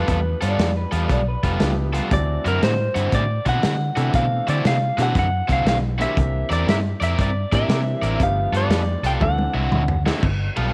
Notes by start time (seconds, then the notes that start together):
Already playing: F3 G3 A3 B3 D4 F4 G4 A4 B4
0.08 E2, kick, closed hi-hat
0.41 G2 G3 B3 F4 A4 D5, closed hi-hat
0.58 F2, snare, closed hi-hat
0.77 B4
0.91 E2 G3 B3 F4 A4, closed hi-hat
1.09 B1 D5, kick, closed hi-hat
1.28 B4
1.43 F1 G3 B3 F4 A4, kick, closed hi-hat
1.60 C#2 F3 A3 B3 D4 G4, snare, closed hi-hat
1.93 G3 B3 F4 A4, closed hi-hat
2.11 D2 E3 A3 C4 D4 F#4 D5, kick, closed hi-hat
2.45 F#2 D3 C4 E4 F#4 A#4, closed hi-hat
2.62 A2 C5, snare, closed hi-hat
2.95 G2 D3 C4 E4 F#4, closed hi-hat
3.12 A2 D5, kick, closed hi-hat
3.46 B2 D3 C4 E4 F#4 F#5, kick, closed hi-hat
3.63 D3, snare, closed hi-hat
3.96 C3 D3 E3 A3 C4 D4 E4 F#4 A4, closed hi-hat
4.13 B2 F5, kick, closed hi-hat
4.47 D3 C4 E4 F#4 D5, closed hi-hat
4.65 C3 F5, snare, closed hi-hat
4.97 B2 D3 E3 A3 C4 D4 E4 F#4, snare, closed hi-hat
5.03 F#5
5.15 F#2, kick, closed hi-hat
5.19 F#5
5.48 C2 D3 C4 E4 F#4, kick, closed hi-hat
5.53 F5
5.65 B1 F5, snare, closed hi-hat
5.98 D3 E3 A#3 C4 D4 E4 F#4 G4 E5, closed hi-hat
6.17 C2, kick, closed hi-hat
6.49 E2 C4 E4 A#4 D5, closed hi-hat
6.67 G2 E5, snare, closed hi-hat
7.00 F2 C4 E4 A#4 D5 E5, closed hi-hat
7.19 G2 D5, kick, closed hi-hat
7.52 A2 E3 A#3 C4 D4 E4 G4 A#4 D5 E5, kick, closed hi-hat
7.68 C3, snare, closed hi-hat
8.02 A1 C4 E4 A#4 D5, closed hi-hat
8.20 G1 F3 A3 B3 D4 G4 F5, kick, closed hi-hat
8.52 G2 G3 B3 F4 A4, closed hi-hat
8.57 D5
8.69 F2, snare, closed hi-hat
9.03 C2 G3 B3 F4 A4 G5, closed hi-hat
9.21 D2 E3 A3 C4 D4 A4 F#5, kick, high tom
9.38 high tom
9.54 C2 D3 C4 E4 F#4
9.71 D2, mid tom
9.88 floor tom
10.06 D3 C4 E4 F#4, snare
10.23 G1, kick, crash
10.56 B1 G3 B3 F4 A4, ride